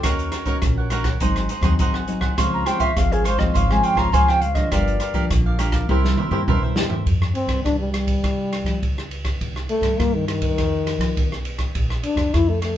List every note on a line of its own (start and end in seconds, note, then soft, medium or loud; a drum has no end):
0.03 0.29 D#2 medium
0.03 0.60 D#3 medium
0.03 0.44 C#4 medium
0.03 0.30 D#4 medium
0.03 0.44 F#4 medium
0.03 0.31 A#4 medium
0.03 0.44 A#4 medium
0.03 0.32 C#5 medium
0.03 0.33 F#5 medium
0.03 kick medium
0.03 cross-stick medium
0.03 closed hi-hat medium
0.19 closed hi-hat soft
0.32 0.45 D#4 medium
0.32 0.46 A#4 soft
0.32 0.46 C#5 medium
0.32 0.46 F#5 medium
0.32 cross-stick medium
0.32 closed hi-hat soft
0.45 0.87 C#4 medium
0.45 0.56 D#4 medium
0.45 0.87 F#4 medium
0.45 0.56 A#4 medium
0.45 0.87 A#4 medium
0.45 0.56 C#5 medium
0.45 0.57 F#5 medium
0.45 kick medium
0.45 closed hi-hat soft
0.62 1.12 A#1 medium
0.62 1.18 A#2 medium
0.62 kick medium
0.62 cross-stick medium
0.62 closed hi-hat medium
0.78 0.90 A#4 soft
0.78 0.91 C#5 soft
0.78 0.91 F#5 soft
0.90 1.09 C#4 medium
0.90 1.05 D#4 medium
0.90 1.09 F#4 medium
0.90 1.05 A#4 medium
0.90 1.09 A#4 medium
0.90 1.04 C#5 medium
0.90 1.03 F#5 medium
0.90 cross-stick medium
0.90 closed hi-hat soft
1.04 1.20 A#4 soft
1.04 1.19 C#5 soft
1.04 1.19 F#5 soft
1.04 kick medium
1.04 cross-stick medium
1.04 closed hi-hat soft
1.20 1.46 G#1 loud
1.20 1.77 G#2 medium
1.20 1.49 F#3 medium
1.20 1.49 C4 medium
1.20 1.48 D#4 medium
1.20 1.49 D#4 medium
1.20 1.49 G#4 medium
1.20 1.50 C5 medium
1.20 1.50 F#5 medium
1.20 kick medium
1.20 closed hi-hat medium
1.36 cross-stick medium
1.36 closed hi-hat soft
1.49 1.62 D#4 soft
1.49 1.63 G#4 medium
1.49 1.63 C5 medium
1.49 1.63 F#5 medium
1.49 closed hi-hat medium
1.61 1.75 D#2 medium
1.61 2.03 F#3 medium
1.61 2.03 C4 medium
1.61 1.73 D#4 medium
1.61 2.03 D#4 medium
1.61 1.74 G#4 medium
1.61 1.74 C5 medium
1.61 1.74 F#5 medium
1.61 kick medium
1.61 cross-stick medium
1.61 closed hi-hat soft
1.79 2.29 G#1 medium
1.79 2.35 D#3 medium
1.79 1.93 D#4 medium
1.79 1.93 G#4 medium
1.79 1.94 C5 medium
1.79 1.93 F#5 medium
1.79 kick medium
1.79 closed hi-hat medium
1.94 2.22 G#4 soft
1.94 2.21 C5 soft
1.94 2.20 F#5 soft
1.94 cross-stick medium
2.07 2.33 F#3 medium
2.07 2.33 C4 medium
2.07 2.33 D#4 medium
2.07 closed hi-hat soft
2.21 2.37 G#4 soft
2.21 2.36 C5 soft
2.21 2.36 F#5 medium
2.21 kick medium
2.21 cross-stick medium
2.37 2.63 C#2 medium
2.37 2.93 C#3 medium
2.37 2.62 F3 medium
2.37 2.62 G#3 medium
2.37 2.63 C4 medium
2.37 2.64 F4 medium
2.37 2.65 C5 medium
2.37 2.66 C#5 medium
2.37 2.66 F5 medium
2.37 kick medium
2.37 cross-stick medium
2.37 closed hi-hat medium
2.54 2.68 A#5 medium
2.65 2.91 F3 soft
2.65 2.92 G#3 medium
2.65 2.92 C4 medium
2.65 2.78 F4 soft
2.65 2.79 C5 medium
2.65 2.79 C#5 medium
2.65 2.79 F5 medium
2.65 2.82 G5 medium
2.65 cross-stick medium
2.65 closed hi-hat soft
2.79 2.90 F4 medium
2.79 2.90 C5 medium
2.79 2.90 C#5 medium
2.79 2.98 E5 medium
2.79 2.90 F5 medium
2.79 kick medium
2.79 closed hi-hat soft
2.96 3.46 G#1 medium
2.96 3.52 G#2 medium
2.96 3.24 F3 medium
2.96 3.24 G#3 medium
2.96 3.24 C4 medium
2.96 3.14 F5 medium
2.96 kick medium
2.96 cross-stick medium
2.96 closed hi-hat medium
3.11 3.27 G#4 medium
3.11 3.23 C5 soft
3.11 3.24 C#5 soft
3.11 3.25 F5 soft
3.11 closed hi-hat soft
3.24 3.39 F4 medium
3.24 3.38 C5 medium
3.24 3.41 C5 medium
3.24 3.38 C#5 medium
3.24 3.37 F5 medium
3.24 cross-stick medium
3.24 closed hi-hat soft
3.38 3.64 F3 medium
3.38 3.64 G#3 medium
3.38 3.64 C4 medium
3.38 3.53 C5 soft
3.38 3.53 C#5 soft
3.38 3.58 D#5 medium
3.38 3.53 F5 medium
3.38 kick medium
3.38 cross-stick medium
3.54 3.80 G#1 loud
3.54 4.11 C#3 medium
3.54 3.81 F4 medium
3.54 3.82 C5 medium
3.54 3.82 C#5 medium
3.54 3.83 F5 medium
3.54 3.73 F5 medium
3.54 kick medium
3.54 closed hi-hat medium
3.70 4.09 F3 medium
3.70 4.09 G#3 medium
3.70 4.09 C4 medium
3.70 3.85 G#5 medium
3.70 cross-stick medium
3.83 3.95 F4 medium
3.83 3.95 C5 medium
3.83 3.96 C#5 medium
3.83 3.96 F5 medium
3.83 3.99 G5 loud
3.83 closed hi-hat soft
3.95 4.09 G#1 medium
3.95 4.07 F4 medium
3.95 4.07 C5 medium
3.95 4.07 C#5 medium
3.95 4.07 F5 medium
3.95 4.15 A#5 loud
3.95 kick medium
3.95 cross-stick medium
4.12 4.63 C#2 medium
4.12 4.69 G#2 medium
4.12 4.41 F3 medium
4.12 4.41 G#3 medium
4.12 4.41 C4 medium
4.12 4.26 F4 medium
4.12 4.27 C5 medium
4.12 4.27 C#5 medium
4.12 4.27 F5 medium
4.12 4.30 G#5 medium
4.12 kick medium
4.12 closed hi-hat medium
4.28 4.55 C5 soft
4.28 4.55 C#5 soft
4.28 4.54 F5 soft
4.28 4.43 G5 medium
4.28 cross-stick medium
4.41 4.56 F5 medium
4.41 closed hi-hat soft
4.55 4.95 F3 medium
4.55 4.95 A#3 medium
4.55 4.96 D4 medium
4.55 4.71 C5 soft
4.55 4.70 C#5 soft
4.55 4.73 D#5 medium
4.55 4.70 F5 medium
4.55 kick medium
4.55 cross-stick medium
4.55 closed hi-hat soft
4.71 4.97 G1 medium
4.71 5.27 G2 medium
4.71 4.99 G4 medium
4.71 5.00 A#4 medium
4.71 5.30 D5 medium
4.71 5.01 D5 medium
4.71 5.01 F5 medium
4.71 kick medium
4.71 cross-stick medium
4.71 closed hi-hat medium
4.87 closed hi-hat soft
5.00 5.13 G4 soft
5.00 5.13 A#4 medium
5.00 5.14 D5 medium
5.00 5.14 F5 medium
5.00 cross-stick medium
5.00 closed hi-hat soft
5.14 5.54 F3 medium
5.14 5.54 A#3 medium
5.14 5.54 D4 medium
5.14 5.24 G4 medium
5.14 5.24 A#4 medium
5.14 5.25 D5 medium
5.14 5.25 F5 medium
5.14 kick medium
5.14 closed hi-hat soft
5.30 5.80 A#1 medium
5.30 5.86 D3 medium
5.30 kick medium
5.30 cross-stick medium
5.30 closed hi-hat medium
5.46 5.58 A#4 soft
5.46 5.59 D5 soft
5.46 5.59 F5 medium
5.58 5.84 F3 medium
5.58 5.84 A#3 medium
5.58 5.84 D4 medium
5.58 5.73 G4 medium
5.58 5.73 A#4 medium
5.58 5.73 D5 medium
5.58 5.72 F5 medium
5.58 cross-stick medium
5.58 closed hi-hat soft
5.72 5.88 A#4 soft
5.72 5.88 D5 soft
5.72 5.87 F5 medium
5.72 kick medium
5.72 cross-stick medium
5.72 closed hi-hat soft
5.89 6.14 C2 loud
5.89 6.45 C3 medium
5.89 6.16 A#3 medium
5.89 6.16 E4 medium
5.89 6.17 E4 medium
5.89 6.17 G4 medium
5.89 6.17 A#4 medium
5.89 6.18 C5 medium
5.89 6.18 E5 medium
5.89 kick medium
5.89 high tom soft
6.04 snare soft
6.17 6.30 E4 medium
6.17 6.31 A#4 medium
6.17 6.31 C5 medium
6.17 6.31 E5 medium
6.17 mid tom medium
6.31 6.44 G2 medium
6.31 6.71 A#3 medium
6.31 6.41 E4 medium
6.31 6.71 E4 medium
6.31 6.72 G4 medium
6.31 6.41 A#4 medium
6.31 6.42 C5 medium
6.31 6.42 E5 medium
6.31 mid tom medium
6.47 6.98 E2 medium
6.47 7.03 G2 medium
6.47 6.61 E4 medium
6.47 6.62 A#4 medium
6.47 6.62 C5 medium
6.47 6.61 E5 medium
6.47 kick medium
6.47 mid tom medium
6.63 6.90 A#4 soft
6.63 6.90 C5 soft
6.63 6.89 E5 medium
6.63 kick medium
6.76 6.94 A#3 medium
6.76 6.94 E4 medium
6.76 6.94 G4 medium
6.76 snare medium
6.90 7.05 A#4 soft
6.90 7.05 C5 medium
6.90 7.04 E5 soft
6.90 floor tom medium
7.06 7.31 F2 medium
7.06 kick medium
7.06 ride soft
7.22 cross-stick medium
7.35 7.62 C4 medium
7.35 ride soft
7.47 7.61 C2 medium
7.47 kick medium
7.47 cross-stick medium
7.47 ride soft
7.65 8.15 C2 medium
7.65 7.78 D4 medium
7.65 kick medium
7.65 cross-stick medium
7.65 ride soft
7.80 7.92 G3 medium
7.92 9.07 G3 medium
7.92 cross-stick medium
7.92 ride soft
8.07 kick medium
8.07 ride soft
8.24 8.61 C2 medium
8.24 kick medium
8.24 cross-stick medium
8.24 ride soft
8.53 cross-stick medium
8.53 ride soft
8.64 8.78 F3 medium
8.64 kick medium
8.64 cross-stick medium
8.64 ride soft
8.83 9.32 C#2 medium
8.83 kick medium
8.83 ride soft
8.98 cross-stick medium
9.11 ride soft
9.25 kick medium
9.25 cross-stick medium
9.25 ride soft
9.41 9.66 C2 medium
9.41 kick medium
9.41 ride soft
9.56 cross-stick medium
9.69 10.00 A3 medium
9.69 ride soft
9.81 9.95 G2 medium
9.81 kick medium
9.81 cross-stick medium
9.81 ride soft
9.99 10.49 G2 medium
9.99 10.16 A#3 medium
9.99 kick medium
9.99 cross-stick medium
9.99 ride soft
10.14 10.27 D#3 medium
10.27 11.41 D#3 medium
10.27 cross-stick medium
10.27 ride soft
10.42 kick medium
10.42 ride soft
10.58 10.96 F2 medium
10.58 kick medium
10.58 cross-stick medium
10.58 ride soft
10.87 cross-stick medium
10.87 ride soft
10.99 11.13 F3 medium
10.99 kick medium
10.99 cross-stick medium
10.99 ride soft
11.17 11.67 B1 medium
11.17 kick medium
11.17 ride soft
11.32 cross-stick medium
11.45 ride soft
11.59 kick medium
11.59 cross-stick medium
11.59 ride soft
11.75 12.00 A#1 medium
11.75 kick medium
11.75 ride medium
11.90 cross-stick medium
12.03 12.35 D4 medium
12.03 ride soft
12.16 12.30 F2 medium
12.16 kick medium
12.16 cross-stick medium
12.16 ride soft
12.34 12.77 F2 medium
12.34 12.51 E4 loud
12.34 kick medium
12.34 cross-stick medium
12.34 ride soft
12.49 12.62 A3 medium
12.62 12.77 A3 medium
12.62 cross-stick medium
12.62 ride soft